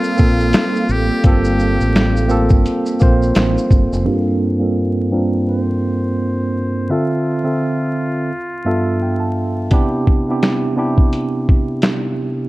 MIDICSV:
0, 0, Header, 1, 6, 480
1, 0, Start_track
1, 0, Tempo, 705882
1, 843, Time_signature, 4, 2, 24, 8
1, 8491, End_track
2, 0, Start_track
2, 0, Title_t, "Muted trumpet"
2, 0, Program_c, 0, 59
2, 0, Note_on_c, 0, 65, 101
2, 619, Note_on_c, 0, 67, 86
2, 629, Note_off_c, 0, 65, 0
2, 851, Note_off_c, 0, 67, 0
2, 857, Note_on_c, 0, 67, 89
2, 1783, Note_off_c, 0, 67, 0
2, 3734, Note_on_c, 0, 72, 102
2, 4693, Note_on_c, 0, 65, 86
2, 4703, Note_off_c, 0, 72, 0
2, 6368, Note_off_c, 0, 65, 0
2, 8491, End_track
3, 0, Start_track
3, 0, Title_t, "Ambient pad"
3, 0, Program_c, 1, 92
3, 0, Note_on_c, 1, 55, 70
3, 0, Note_on_c, 1, 58, 62
3, 0, Note_on_c, 1, 69, 66
3, 0, Note_on_c, 1, 77, 85
3, 2734, Note_off_c, 1, 55, 0
3, 2734, Note_off_c, 1, 69, 0
3, 2734, Note_off_c, 1, 77, 0
3, 2735, Note_off_c, 1, 58, 0
3, 8491, End_track
4, 0, Start_track
4, 0, Title_t, "Tine electric piano"
4, 0, Program_c, 2, 4
4, 0, Control_c, 2, 64, 127
4, 0, Note_on_c, 2, 58, 78
4, 0, Note_on_c, 2, 60, 69
4, 0, Note_on_c, 2, 65, 76
4, 0, Note_on_c, 2, 69, 90
4, 95, Note_off_c, 2, 58, 0
4, 99, Note_off_c, 2, 60, 0
4, 102, Note_off_c, 2, 65, 0
4, 106, Note_off_c, 2, 69, 0
4, 113, Note_on_c, 2, 58, 64
4, 119, Note_on_c, 2, 60, 62
4, 125, Note_on_c, 2, 65, 63
4, 133, Note_on_c, 2, 69, 78
4, 803, Note_off_c, 2, 58, 0
4, 806, Note_off_c, 2, 60, 0
4, 809, Note_off_c, 2, 65, 0
4, 813, Note_off_c, 2, 69, 0
4, 841, Note_on_c, 2, 58, 83
4, 849, Note_on_c, 2, 60, 83
4, 854, Note_on_c, 2, 65, 85
4, 862, Note_on_c, 2, 69, 108
4, 1527, Note_off_c, 2, 58, 0
4, 1531, Note_off_c, 2, 60, 0
4, 1533, Note_off_c, 2, 65, 0
4, 1537, Note_off_c, 2, 69, 0
4, 1551, Note_on_c, 2, 58, 88
4, 1558, Note_on_c, 2, 60, 79
4, 1564, Note_on_c, 2, 65, 77
4, 1571, Note_on_c, 2, 69, 101
4, 2013, Note_off_c, 2, 58, 0
4, 2017, Note_off_c, 2, 60, 0
4, 2020, Note_off_c, 2, 65, 0
4, 2023, Note_off_c, 2, 69, 0
4, 2039, Note_on_c, 2, 58, 86
4, 2045, Note_on_c, 2, 60, 79
4, 2051, Note_on_c, 2, 65, 81
4, 2058, Note_on_c, 2, 72, 101
4, 2726, Note_off_c, 2, 58, 0
4, 2729, Note_off_c, 2, 60, 0
4, 2731, Note_off_c, 2, 65, 0
4, 2735, Note_off_c, 2, 72, 0
4, 2754, Note_on_c, 2, 43, 94
4, 2758, Note_on_c, 2, 58, 88
4, 2760, Note_on_c, 2, 60, 87
4, 2766, Note_on_c, 2, 62, 88
4, 2769, Note_on_c, 2, 65, 88
4, 2771, Control_c, 2, 64, 0
4, 2775, Note_on_c, 2, 67, 92
4, 2817, Note_on_c, 2, 69, 100
4, 2822, Note_off_c, 2, 67, 0
4, 2899, Control_c, 2, 64, 127
4, 3114, Note_off_c, 2, 43, 0
4, 3116, Note_off_c, 2, 58, 0
4, 3119, Note_off_c, 2, 60, 0
4, 3122, Note_off_c, 2, 62, 0
4, 3122, Note_on_c, 2, 43, 70
4, 3124, Note_off_c, 2, 65, 0
4, 3124, Note_on_c, 2, 58, 70
4, 3130, Note_on_c, 2, 60, 64
4, 3133, Note_off_c, 2, 69, 0
4, 3133, Note_on_c, 2, 62, 66
4, 3138, Note_on_c, 2, 65, 66
4, 3141, Note_on_c, 2, 69, 80
4, 3453, Note_off_c, 2, 43, 0
4, 3454, Note_off_c, 2, 58, 0
4, 3456, Note_off_c, 2, 60, 0
4, 3458, Note_off_c, 2, 62, 0
4, 3460, Note_off_c, 2, 65, 0
4, 3462, Note_off_c, 2, 69, 0
4, 3476, Note_on_c, 2, 43, 75
4, 3481, Note_on_c, 2, 58, 67
4, 3483, Note_on_c, 2, 60, 79
4, 3486, Note_on_c, 2, 62, 68
4, 3491, Note_on_c, 2, 65, 71
4, 3495, Note_on_c, 2, 70, 88
4, 4392, Note_off_c, 2, 43, 0
4, 4395, Note_off_c, 2, 58, 0
4, 4396, Note_off_c, 2, 60, 0
4, 4397, Note_off_c, 2, 62, 0
4, 4400, Note_off_c, 2, 65, 0
4, 4402, Note_off_c, 2, 70, 0
4, 4688, Note_on_c, 2, 50, 82
4, 4692, Control_c, 2, 64, 0
4, 4692, Note_on_c, 2, 60, 72
4, 4697, Note_on_c, 2, 76, 82
4, 4701, Note_on_c, 2, 65, 78
4, 4707, Note_on_c, 2, 69, 95
4, 4832, Control_c, 2, 64, 127
4, 5043, Note_off_c, 2, 50, 0
4, 5045, Note_off_c, 2, 60, 0
4, 5048, Note_off_c, 2, 76, 0
4, 5050, Note_off_c, 2, 65, 0
4, 5053, Note_off_c, 2, 69, 0
4, 5056, Note_on_c, 2, 50, 66
4, 5060, Note_on_c, 2, 60, 62
4, 5065, Note_on_c, 2, 76, 61
4, 5071, Note_on_c, 2, 65, 56
4, 5076, Note_on_c, 2, 69, 67
4, 5637, Note_off_c, 2, 50, 0
4, 5639, Note_off_c, 2, 60, 0
4, 5642, Note_off_c, 2, 76, 0
4, 5645, Note_off_c, 2, 65, 0
4, 5647, Note_off_c, 2, 69, 0
4, 5651, Control_c, 2, 64, 0
4, 5766, Control_c, 2, 64, 127
4, 5880, Note_on_c, 2, 43, 83
4, 5883, Note_on_c, 2, 59, 75
4, 5889, Note_on_c, 2, 62, 75
4, 5890, Note_on_c, 2, 77, 63
4, 5892, Note_on_c, 2, 76, 75
4, 5896, Note_on_c, 2, 65, 68
4, 5899, Note_on_c, 2, 69, 94
4, 6110, Note_off_c, 2, 77, 0
4, 6136, Note_on_c, 2, 79, 57
4, 6256, Note_on_c, 2, 81, 62
4, 6264, Note_off_c, 2, 79, 0
4, 6566, Note_off_c, 2, 43, 0
4, 6568, Note_off_c, 2, 59, 0
4, 6571, Note_off_c, 2, 62, 0
4, 6572, Note_off_c, 2, 76, 0
4, 6573, Note_off_c, 2, 81, 0
4, 6574, Note_off_c, 2, 65, 0
4, 6576, Note_off_c, 2, 69, 0
4, 6600, Note_on_c, 2, 48, 93
4, 6606, Note_on_c, 2, 59, 92
4, 6609, Note_on_c, 2, 62, 94
4, 6611, Control_c, 2, 64, 0
4, 6614, Note_on_c, 2, 64, 90
4, 6620, Note_on_c, 2, 67, 109
4, 6726, Control_c, 2, 64, 127
4, 6959, Note_off_c, 2, 48, 0
4, 6962, Note_off_c, 2, 59, 0
4, 6964, Note_off_c, 2, 62, 0
4, 6966, Note_off_c, 2, 64, 0
4, 6969, Note_off_c, 2, 67, 0
4, 6994, Note_on_c, 2, 48, 73
4, 6999, Note_on_c, 2, 59, 70
4, 7005, Note_on_c, 2, 62, 65
4, 7008, Note_on_c, 2, 64, 61
4, 7013, Note_on_c, 2, 67, 79
4, 7308, Note_off_c, 2, 48, 0
4, 7311, Note_off_c, 2, 59, 0
4, 7314, Note_off_c, 2, 62, 0
4, 7315, Note_on_c, 2, 48, 78
4, 7316, Note_off_c, 2, 64, 0
4, 7318, Note_off_c, 2, 67, 0
4, 7321, Note_on_c, 2, 59, 73
4, 7326, Note_on_c, 2, 62, 75
4, 7331, Note_on_c, 2, 64, 71
4, 7335, Note_on_c, 2, 67, 91
4, 8232, Note_off_c, 2, 48, 0
4, 8235, Note_off_c, 2, 59, 0
4, 8238, Note_off_c, 2, 62, 0
4, 8240, Note_off_c, 2, 64, 0
4, 8242, Note_off_c, 2, 67, 0
4, 8491, End_track
5, 0, Start_track
5, 0, Title_t, "Fingered electric bass"
5, 0, Program_c, 3, 33
5, 135, Note_on_c, 3, 34, 94
5, 355, Note_off_c, 3, 34, 0
5, 605, Note_on_c, 3, 33, 82
5, 739, Note_off_c, 3, 33, 0
5, 847, Note_on_c, 3, 31, 94
5, 1206, Note_off_c, 3, 31, 0
5, 1229, Note_on_c, 3, 33, 79
5, 1681, Note_off_c, 3, 33, 0
5, 1706, Note_on_c, 3, 31, 84
5, 1796, Note_off_c, 3, 31, 0
5, 2053, Note_on_c, 3, 34, 86
5, 2273, Note_off_c, 3, 34, 0
5, 2286, Note_on_c, 3, 33, 83
5, 2420, Note_off_c, 3, 33, 0
5, 2524, Note_on_c, 3, 31, 82
5, 2659, Note_off_c, 3, 31, 0
5, 2669, Note_on_c, 3, 29, 81
5, 2758, Note_off_c, 3, 29, 0
5, 8491, End_track
6, 0, Start_track
6, 0, Title_t, "Drums"
6, 25, Note_on_c, 9, 82, 51
6, 93, Note_off_c, 9, 82, 0
6, 119, Note_on_c, 9, 82, 45
6, 133, Note_on_c, 9, 36, 82
6, 187, Note_off_c, 9, 82, 0
6, 201, Note_off_c, 9, 36, 0
6, 272, Note_on_c, 9, 82, 34
6, 340, Note_off_c, 9, 82, 0
6, 361, Note_on_c, 9, 42, 72
6, 361, Note_on_c, 9, 82, 65
6, 369, Note_on_c, 9, 38, 120
6, 376, Note_on_c, 9, 26, 98
6, 429, Note_off_c, 9, 42, 0
6, 429, Note_off_c, 9, 82, 0
6, 437, Note_off_c, 9, 38, 0
6, 444, Note_off_c, 9, 26, 0
6, 514, Note_on_c, 9, 82, 45
6, 582, Note_off_c, 9, 82, 0
6, 602, Note_on_c, 9, 82, 44
6, 670, Note_off_c, 9, 82, 0
6, 841, Note_on_c, 9, 42, 64
6, 841, Note_on_c, 9, 82, 65
6, 845, Note_on_c, 9, 36, 111
6, 909, Note_off_c, 9, 42, 0
6, 909, Note_off_c, 9, 82, 0
6, 913, Note_off_c, 9, 36, 0
6, 982, Note_on_c, 9, 82, 49
6, 1050, Note_off_c, 9, 82, 0
6, 1085, Note_on_c, 9, 82, 44
6, 1153, Note_off_c, 9, 82, 0
6, 1228, Note_on_c, 9, 82, 43
6, 1296, Note_off_c, 9, 82, 0
6, 1331, Note_on_c, 9, 42, 59
6, 1331, Note_on_c, 9, 82, 58
6, 1333, Note_on_c, 9, 38, 107
6, 1340, Note_on_c, 9, 26, 83
6, 1399, Note_off_c, 9, 42, 0
6, 1399, Note_off_c, 9, 82, 0
6, 1401, Note_off_c, 9, 38, 0
6, 1408, Note_off_c, 9, 26, 0
6, 1473, Note_on_c, 9, 82, 47
6, 1541, Note_off_c, 9, 82, 0
6, 1559, Note_on_c, 9, 82, 43
6, 1627, Note_off_c, 9, 82, 0
6, 1695, Note_on_c, 9, 82, 47
6, 1703, Note_on_c, 9, 36, 91
6, 1763, Note_off_c, 9, 82, 0
6, 1771, Note_off_c, 9, 36, 0
6, 1806, Note_on_c, 9, 42, 52
6, 1806, Note_on_c, 9, 82, 58
6, 1874, Note_off_c, 9, 42, 0
6, 1874, Note_off_c, 9, 82, 0
6, 1944, Note_on_c, 9, 82, 48
6, 2012, Note_off_c, 9, 82, 0
6, 2036, Note_on_c, 9, 82, 48
6, 2052, Note_on_c, 9, 36, 88
6, 2104, Note_off_c, 9, 82, 0
6, 2120, Note_off_c, 9, 36, 0
6, 2192, Note_on_c, 9, 82, 33
6, 2260, Note_off_c, 9, 82, 0
6, 2279, Note_on_c, 9, 42, 70
6, 2279, Note_on_c, 9, 82, 70
6, 2287, Note_on_c, 9, 38, 119
6, 2294, Note_on_c, 9, 26, 103
6, 2347, Note_off_c, 9, 42, 0
6, 2347, Note_off_c, 9, 82, 0
6, 2355, Note_off_c, 9, 38, 0
6, 2362, Note_off_c, 9, 26, 0
6, 2434, Note_on_c, 9, 82, 45
6, 2502, Note_off_c, 9, 82, 0
6, 2521, Note_on_c, 9, 36, 87
6, 2522, Note_on_c, 9, 82, 42
6, 2589, Note_off_c, 9, 36, 0
6, 2590, Note_off_c, 9, 82, 0
6, 2672, Note_on_c, 9, 82, 43
6, 2740, Note_off_c, 9, 82, 0
6, 6601, Note_on_c, 9, 42, 57
6, 6606, Note_on_c, 9, 36, 99
6, 6669, Note_off_c, 9, 42, 0
6, 6674, Note_off_c, 9, 36, 0
6, 6849, Note_on_c, 9, 36, 75
6, 6917, Note_off_c, 9, 36, 0
6, 7090, Note_on_c, 9, 42, 54
6, 7091, Note_on_c, 9, 38, 98
6, 7099, Note_on_c, 9, 26, 75
6, 7158, Note_off_c, 9, 42, 0
6, 7159, Note_off_c, 9, 38, 0
6, 7167, Note_off_c, 9, 26, 0
6, 7465, Note_on_c, 9, 36, 80
6, 7533, Note_off_c, 9, 36, 0
6, 7567, Note_on_c, 9, 42, 50
6, 7635, Note_off_c, 9, 42, 0
6, 7812, Note_on_c, 9, 36, 76
6, 7880, Note_off_c, 9, 36, 0
6, 8037, Note_on_c, 9, 42, 63
6, 8045, Note_on_c, 9, 38, 114
6, 8052, Note_on_c, 9, 26, 96
6, 8105, Note_off_c, 9, 42, 0
6, 8113, Note_off_c, 9, 38, 0
6, 8120, Note_off_c, 9, 26, 0
6, 8491, End_track
0, 0, End_of_file